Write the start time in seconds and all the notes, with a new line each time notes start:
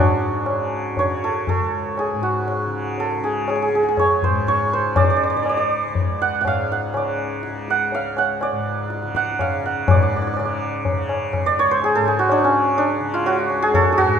Already playing: C#2 G#2 C#3 D4 F#4 G#4
0.46 tabla na
0.51 C#3
0.97 C#5, tabla tin, tabla ge
1.05 C#3
1.24 A4
1.47 A4, tabla na, tabla ge
1.59 C#2
1.98 G#4, tabla na
2.14 G#2
2.23 F#4
2.48 tabla na
2.66 C#3
2.98 A4, tabla tin
3.20 C#3 G#4
3.48 G#4, tabla na
3.56 G#4
3.62 G#4
3.68 G#4
3.74 C#2 G#4
3.83 G#4
3.88 G#4
3.97 C#5, tabla na, tabla ge
4.23 C5, tabla ge
4.28 G#2
4.47 C#5, tabla na, tabla ge
4.72 C5, tabla te
4.81 C#3
4.96 D5, tabla na, tabla ge
5.04 D5
5.10 D5
5.16 D5
5.23 D5
5.30 D5
5.34 C#3 D5
5.43 D5, tabla na
5.49 D5
5.57 D5
5.87 C#2
5.95 tabla tin, tabla ge
6.22 F#5
6.40 G#2 F#5
6.45 F5, tabla na, tabla ge
6.72 F#5
6.94 C#3 D5, tabla na
7.19 tabla na
7.43 C#3, tabla te
7.68 F#5, tabla te
7.92 F5, tabla tin
7.98 C#2
8.17 F#5, tabla na
8.41 D5, tabla na
8.51 G#2
8.90 tabla te
9.03 C#3, tabla te
9.15 F#5, tabla ke
9.27 tabla te
9.39 F5, tabla na, tabla ge
9.56 C#3
9.63 F#5, tabla te
9.87 G#2 D5, tabla na, tabla ge
9.96 D5
10.02 D5
10.09 D5
10.16 D5
10.22 D5
10.27 D5
10.33 D5, tabla na
10.39 C#3 D5
10.45 D5
10.85 tabla tin, tabla ge
10.93 C#3
11.09 tabla na
11.33 tabla na, tabla ge
11.44 C#2 D5
11.59 C#5
11.71 C5
11.82 G#4, tabla na
11.95 G#2 A4
12.05 G#4, tabla na
12.19 F#4
12.29 D4, tabla na
12.44 C#3 C#4
12.78 D4, tabla tin
13.00 C#3
13.14 F4
13.26 F#4, tabla na
13.50 C#2, tabla na
13.62 G#4
13.74 A4, tabla na, tabla ge
13.92 G#4
13.98 F#4, tabla ge
14.03 G#2